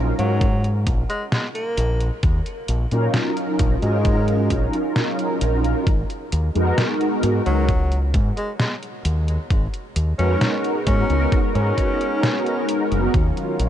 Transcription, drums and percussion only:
0.19 closed hi-hat soft
0.41 kick loud
0.41 closed hi-hat medium
0.64 closed hi-hat soft
0.87 kick medium
0.87 closed hi-hat medium
1.10 closed hi-hat soft
1.32 snare loud
1.32 closed hi-hat medium
1.55 closed hi-hat soft
1.77 closed hi-hat medium
2.00 closed hi-hat soft
2.23 kick loud
2.23 closed hi-hat medium
2.46 closed hi-hat soft
2.68 closed hi-hat medium
2.91 closed hi-hat soft
3.14 snare loud
3.14 closed hi-hat medium
3.37 closed hi-hat soft
3.59 kick loud
3.59 closed hi-hat medium
3.82 closed hi-hat soft
4.05 kick loud
4.05 closed hi-hat medium
4.28 closed hi-hat soft
4.50 kick medium
4.50 closed hi-hat medium
4.73 closed hi-hat soft
4.96 snare loud
4.96 closed hi-hat medium
5.19 closed hi-hat soft
5.41 closed hi-hat loud
5.64 closed hi-hat soft
5.87 kick loud
5.87 closed hi-hat medium
6.10 closed hi-hat soft
6.32 closed hi-hat medium
6.55 closed hi-hat soft
6.78 snare loud
6.78 closed hi-hat medium
7.01 closed hi-hat soft
7.23 closed hi-hat medium
7.46 closed hi-hat soft
7.69 kick loud
7.69 closed hi-hat medium
7.92 closed hi-hat soft
8.14 kick loud
8.14 closed hi-hat medium
8.37 closed hi-hat soft
8.60 snare loud
8.60 closed hi-hat medium
8.83 closed hi-hat soft
9.05 closed hi-hat medium
9.28 closed hi-hat soft
9.50 kick loud
9.50 closed hi-hat medium
9.74 closed hi-hat soft
9.96 closed hi-hat medium
10.19 closed hi-hat soft
10.41 snare loud
10.41 closed hi-hat medium
10.64 closed hi-hat soft
10.87 kick loud
10.87 closed hi-hat medium
11.10 closed hi-hat soft
11.32 kick loud
11.32 closed hi-hat medium
11.55 closed hi-hat soft
11.78 kick medium
11.78 closed hi-hat medium
12.01 closed hi-hat soft
12.23 snare loud
12.23 closed hi-hat medium
12.46 closed hi-hat soft
12.69 closed hi-hat medium
12.92 closed hi-hat soft
13.14 kick loud
13.14 closed hi-hat medium
13.37 closed hi-hat soft
13.59 closed hi-hat medium

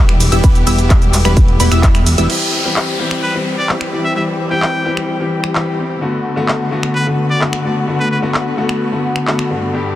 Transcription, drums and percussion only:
0.09 finger snap medium
0.09 closed hi-hat soft
0.20 open hi-hat loud
0.20 ride medium
0.20 shaker medium
0.32 closed hi-hat medium
0.32 shaker soft
0.44 kick loud
0.44 closed hi-hat medium
0.44 shaker soft
0.55 closed hi-hat soft
0.55 shaker soft
0.67 open hi-hat loud
0.67 ride medium
0.67 shaker medium
0.79 closed hi-hat medium
0.79 shaker soft
0.90 kick loud
0.90 clap loud
0.90 closed hi-hat medium
0.90 shaker soft
1.02 closed hi-hat soft
1.02 shaker soft
1.13 clap soft
1.13 open hi-hat loud
1.13 ride medium
1.13 shaker medium
1.25 finger snap medium
1.25 closed hi-hat medium
1.25 shaker soft
1.37 kick loud
1.37 closed hi-hat medium
1.37 shaker soft
1.48 closed hi-hat soft
1.60 open hi-hat loud
1.60 ride medium
1.60 shaker medium
1.72 finger snap medium
1.72 closed hi-hat medium
1.72 shaker soft
1.83 kick loud
1.83 clap loud
1.83 closed hi-hat medium
1.83 shaker soft
1.95 finger snap medium
1.95 closed hi-hat soft
1.95 shaker soft
2.06 open hi-hat loud
2.06 ride medium
2.06 shaker medium
2.18 closed hi-hat medium
2.18 shaker soft
2.30 crash medium
2.76 clap loud
3.11 finger snap medium
3.69 clap loud
3.81 finger snap medium
4.62 clap loud
4.97 finger snap medium
5.44 finger snap medium
5.55 clap loud
6.48 clap loud
6.83 finger snap medium
7.41 clap loud
7.53 finger snap medium
8.34 clap loud
8.69 finger snap medium
9.16 finger snap medium
9.27 clap loud
9.39 finger snap medium

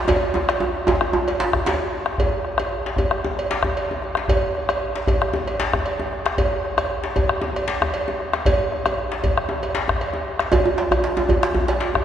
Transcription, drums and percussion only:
0.08 bombo rim soft
0.08 bombo low medium
0.08 cowbell medium
0.08 djembe slap medium
0.08 djembe tone loud
0.08 djembe bass medium
0.23 bombo rim soft
0.23 djembe slap soft
0.34 bombo rim soft
0.34 djembe tone loud
0.34 djembe tone medium
0.49 bombo rim medium
0.49 cowbell medium
0.49 djembe slap medium
0.60 bombo rim soft
0.60 djembe slap soft
0.60 djembe tone loud
0.76 djembe slap soft
0.87 bombo low medium
0.87 cowbell medium
0.87 djembe slap medium
0.87 djembe tone loud
0.87 djembe bass medium
1.01 bombo rim medium
1.01 djembe tone medium
1.13 djembe tone loud
1.28 bombo rim soft
1.28 cowbell medium
1.28 djembe slap medium
1.40 djembe slap loud
1.53 bombo rim medium
1.53 bombo low medium
1.53 djembe slap soft
1.53 djembe bass medium
1.66 cowbell medium
1.66 djembe slap medium
1.66 djembe tone medium
1.80 bombo rim soft
2.06 bombo rim medium
2.18 bombo low loud
2.18 cowbell medium
2.18 djembe bass medium
2.45 bombo rim soft
2.58 bombo rim medium
2.58 cowbell medium
2.58 djembe tone medium
2.86 djembe slap medium
2.96 bombo rim soft
2.96 bombo low loud
2.96 cowbell medium
2.96 djembe bass medium
3.11 bombo rim medium
3.24 djembe slap soft
3.24 djembe tone medium
3.37 bombo rim soft
3.37 cowbell medium
3.51 djembe slap medium
3.63 bombo rim medium
3.63 bombo low medium
3.63 djembe bass medium
3.77 cowbell medium
3.77 djembe slap soft
3.91 djembe slap soft
3.91 djembe tone medium
4.02 bombo rim soft
4.02 djembe slap soft
4.15 bombo rim medium
4.15 djembe slap medium
4.28 bombo low loud
4.28 cowbell medium
4.28 djembe bass medium
4.55 bombo rim soft
4.69 bombo rim medium
4.69 cowbell medium
4.69 djembe tone medium
4.96 djembe slap medium
5.07 bombo rim soft
5.07 bombo low loud
5.07 cowbell medium
5.07 djembe bass medium
5.22 bombo rim medium
5.33 djembe slap soft
5.33 djembe tone medium
5.47 bombo rim soft
5.47 cowbell medium
5.60 djembe slap medium
5.73 bombo rim medium
5.73 bombo low medium
5.73 djembe bass medium
5.86 cowbell medium
5.86 djembe slap soft
5.99 djembe slap soft
5.99 djembe tone medium
6.12 bombo rim soft
6.12 djembe slap soft
6.26 bombo rim medium
6.26 djembe slap medium
6.38 bombo low loud
6.38 cowbell medium
6.38 djembe bass medium
6.65 bombo rim soft
6.78 bombo rim medium
6.78 cowbell medium
6.78 djembe tone medium
7.04 djembe slap medium
7.16 bombo rim soft
7.16 bombo low loud
7.16 cowbell medium
7.16 djembe bass medium
7.29 bombo rim medium
7.42 djembe slap soft
7.42 djembe tone medium
7.56 bombo rim soft
7.56 cowbell medium
7.68 djembe slap medium
7.82 bombo rim medium
7.82 djembe bass medium
7.94 cowbell medium
7.94 djembe slap soft
8.08 djembe slap soft
8.08 djembe tone medium
8.20 bombo rim soft
8.33 bombo rim medium
8.33 djembe slap medium
8.46 bombo rim soft
8.46 bombo low loud
8.46 cowbell medium
8.46 djembe bass medium
8.72 bombo rim soft
8.72 djembe slap soft
8.86 bombo rim medium
8.86 cowbell medium
8.86 djembe slap soft
8.86 djembe tone medium
8.98 bombo rim soft
8.98 djembe slap soft
9.12 djembe slap medium
9.24 bombo low loud
9.24 cowbell medium
9.24 djembe slap soft
9.24 djembe bass medium
9.37 bombo rim medium
9.49 djembe tone medium
9.62 bombo rim soft
9.62 cowbell medium
9.62 djembe slap soft
9.75 bombo rim soft
9.75 djembe slap medium
9.88 bombo rim medium
9.88 bombo low medium
9.88 djembe slap soft
9.88 djembe bass medium
10.01 bombo rim soft
10.01 cowbell medium
10.13 djembe tone medium
10.39 bombo rim medium
10.39 djembe slap medium
10.52 bombo low loud
10.52 cowbell medium
10.52 djembe tone loud
10.52 djembe bass medium
10.65 djembe tone medium
10.78 bombo rim soft
10.78 djembe slap medium
10.91 bombo rim medium
10.91 cowbell medium
10.91 djembe tone medium
10.91 djembe bass medium
11.04 djembe slap medium
11.17 djembe slap medium
11.17 djembe tone loud
11.29 bombo rim soft
11.29 bombo low loud
11.29 cowbell medium
11.29 djembe tone medium
11.29 djembe bass medium
11.43 bombo rim medium
11.43 djembe slap medium
11.54 djembe slap soft
11.54 djembe tone medium
11.54 djembe bass medium
11.68 bombo rim soft
11.68 cowbell medium
11.68 djembe slap medium
11.80 djembe slap medium
11.94 bombo rim medium
11.94 bombo low medium
11.94 djembe bass medium

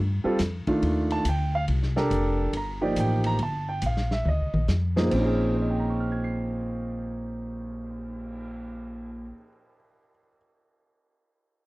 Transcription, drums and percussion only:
0.39 snare soft
0.39 hi-hat pedal medium
0.39 ride medium
0.67 kick soft
0.67 ride soft
0.82 ride soft
1.10 ride soft
1.25 hi-hat pedal soft
1.25 ride medium
1.68 ride soft
1.83 snare soft
1.97 snare soft
2.11 hi-hat pedal soft
2.11 ride medium
2.53 ride medium
2.96 hi-hat pedal medium
2.96 ride medium
3.24 ride soft
3.39 ride soft
3.82 hi-hat pedal medium
3.82 ride medium
3.97 snare soft
4.11 snare soft
4.25 mid tom soft
4.54 mid tom medium
4.68 snare soft
4.68 hi-hat pedal soft
4.97 snare medium
5.11 kick soft
5.11 crash medium
5.39 cymbal swell soft

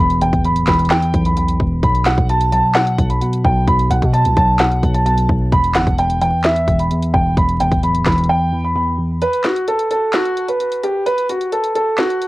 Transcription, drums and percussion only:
0.10 closed hi-hat medium
0.21 closed hi-hat medium
0.33 kick loud
0.33 closed hi-hat medium
0.45 closed hi-hat medium
0.56 closed hi-hat medium
0.67 kick loud
0.67 snare loud
0.67 clap medium
0.67 closed hi-hat medium
0.67 open hi-hat medium
0.73 closed hi-hat medium
0.79 closed hi-hat medium
0.85 closed hi-hat soft
0.90 snare loud
0.90 clap medium
0.90 closed hi-hat medium
1.02 closed hi-hat medium
1.14 kick loud
1.14 closed hi-hat medium
1.25 closed hi-hat medium
1.37 closed hi-hat medium
1.48 closed hi-hat medium
1.60 kick medium
1.83 kick loud
1.83 closed hi-hat medium
1.95 closed hi-hat medium
2.05 snare loud
2.05 clap medium
2.05 closed hi-hat medium
2.18 kick loud
2.18 closed hi-hat medium
2.29 closed hi-hat medium
2.41 closed hi-hat medium
2.52 closed hi-hat medium
2.75 snare loud
2.75 clap medium
2.75 closed hi-hat medium
2.87 closed hi-hat medium
2.99 kick loud
2.99 closed hi-hat medium
3.10 closed hi-hat medium
3.22 closed hi-hat medium
3.33 closed hi-hat medium
3.45 kick medium
3.68 kick loud
3.68 closed hi-hat medium
3.79 closed hi-hat medium
3.91 closed hi-hat medium
4.02 kick loud
4.02 closed hi-hat medium
4.14 closed hi-hat medium
4.25 closed hi-hat medium
4.37 kick loud
4.37 closed hi-hat medium
4.59 snare loud
4.59 clap medium
4.59 closed hi-hat medium
4.72 closed hi-hat medium
4.83 kick loud
4.83 closed hi-hat medium
4.94 closed hi-hat medium
5.06 closed hi-hat medium
5.18 closed hi-hat medium
5.29 kick medium
5.52 kick loud
5.52 closed hi-hat medium
5.64 closed hi-hat medium
5.74 snare loud
5.74 clap medium
5.74 closed hi-hat medium
5.87 kick loud
5.87 closed hi-hat medium
5.98 closed hi-hat medium
6.10 closed hi-hat medium
6.22 closed hi-hat medium
6.44 snare loud
6.44 clap medium
6.44 closed hi-hat medium
6.56 closed hi-hat medium
6.68 kick loud
6.68 closed hi-hat medium
6.79 closed hi-hat medium
6.91 closed hi-hat medium
7.02 closed hi-hat medium
7.14 kick medium
7.37 kick loud
7.37 closed hi-hat medium
7.49 closed hi-hat medium
7.60 closed hi-hat medium
7.71 kick loud
7.71 closed hi-hat medium
7.83 closed hi-hat medium
7.95 closed hi-hat medium
8.05 kick loud
8.05 snare loud
8.05 clap medium
8.05 closed hi-hat medium
8.05 open hi-hat medium
8.12 closed hi-hat medium
8.18 closed hi-hat medium
8.24 closed hi-hat soft
9.22 closed hi-hat medium
9.33 closed hi-hat soft
9.44 snare loud
9.44 clap medium
9.44 closed hi-hat medium
9.56 closed hi-hat medium
9.68 closed hi-hat medium
9.79 closed hi-hat medium
9.91 closed hi-hat medium
10.13 snare loud
10.13 clap medium
10.13 closed hi-hat medium
10.26 closed hi-hat medium
10.37 closed hi-hat medium
10.48 closed hi-hat medium
10.60 closed hi-hat medium
10.72 closed hi-hat medium
10.83 closed hi-hat medium
11.06 closed hi-hat medium
11.18 closed hi-hat medium
11.29 closed hi-hat medium
11.41 closed hi-hat medium
11.52 closed hi-hat medium
11.64 closed hi-hat medium
11.75 closed hi-hat medium
11.98 snare loud
11.98 clap medium
11.98 closed hi-hat medium
12.10 closed hi-hat medium
12.22 closed hi-hat medium

